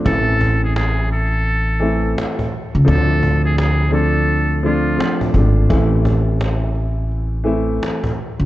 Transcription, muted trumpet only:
X:1
M:4/4
L:1/16
Q:"Swing 16ths" 1/4=85
K:Am
V:1 name="Muted trumpet"
A3 ^G G2 A6 z4 | A3 ^G G2 A4 F3 z3 | z16 |]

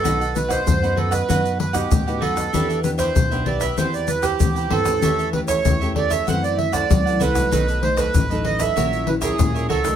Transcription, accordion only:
X:1
M:4/4
L:1/16
Q:1/4=96
K:Bphr
V:1 name="Accordion"
A2 B c3 A B3 B G3 A2- | A2 B c3 d e c d B G3 A2- | A2 B ^c3 d e f d e d3 B2- | B2 c B3 ^d e3 B ^G3 A2 |]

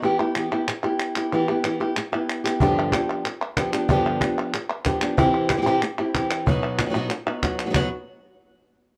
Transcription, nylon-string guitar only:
X:1
M:4/4
L:1/8
Q:1/4=187
K:none
V:1 name="Nylon-string guitar"
[E,B,EG] [B,EG] [E,B,EG] [B,EG] z [B,EG]2 [B,EG] | [E,B,EG] [B,EG] [E,B,EG] [B,EG] z [B,EG]2 [B,EG] | [G,,D,F,B,DG]2 [F,B,DG]2 z2 [F,B,DG] [F,B,DG] | [G,,D,F,B,DG]2 [F,B,DG]2 z2 [F,B,DG] [F,B,DG] |
[C,E,CEG]2 [CEG] [C,E,CEG] z [CEG] [E,CEG]2 | [B,,^F,B,^D^F]2 [B,DF] [B,,F,B,DF] z [B,DF] [F,B,DF]2 | [B,,^F,B,^D^F] z6 z |]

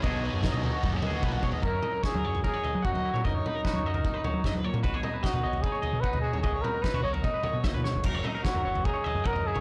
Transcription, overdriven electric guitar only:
X:1
M:4/4
L:1/8
Q:1/4=150
K:B
V:1 name="Overdriven electric guitar"
[B,,D,F,B,D] [F,B,D] [D,F,B,D] [F,B,D] [B,,D,F,B,D] [F,B,D] [D,F,B,D]2 | z8 | z8 | z8 |
z8 | z8 |]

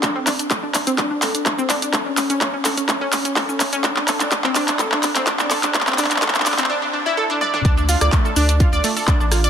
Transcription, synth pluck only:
X:1
M:4/4
L:1/16
Q:1/4=126
K:Dm
V:1 name="Synth pluck"
D C D D A D D C D D A D D C D D | A ^C C C C C A C C C C C A C C C | D D A D D C D D A D D C D D A D | D C D D A D D C D D D E A D d D |
[Dd] [Dd] [Ff] [dd'] [A,A] [Aa] [Dd] [Dd] [Ff] [dd'] [A,A] [Aa] [Dd] [Dd] [Ff] [dd'] |]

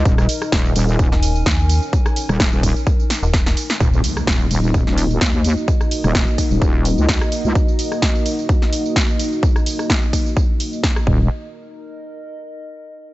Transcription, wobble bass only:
X:1
M:4/4
L:1/16
Q:"Swing 16ths" 1/4=128
K:Ebm
V:1 name="Wobble bass" clef=bass
E,,,2 z2 E,,,2 E,,,3 z6 z | z3 E,,,2 E,,,2 z8 z | E,,,2 z2 E,,,2 E,,,3 E,,,3 E,,3 z | z3 E,,,2 z2 E,,,4 D,,2 z2 D,, |
z16 | z12 z2 E,,,2 | z16 |]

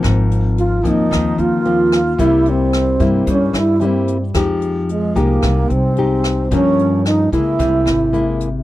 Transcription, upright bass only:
X:1
M:4/4
L:1/8
Q:1/4=111
K:Fm
V:1 name="Upright bass" clef=bass
A,,,3 E,, E,, E,,3 | C,,3 G,, G,, G,,3 | F,,3 C,, C,, C,,3 | G,,3 D, C,, ^G,,,3 |]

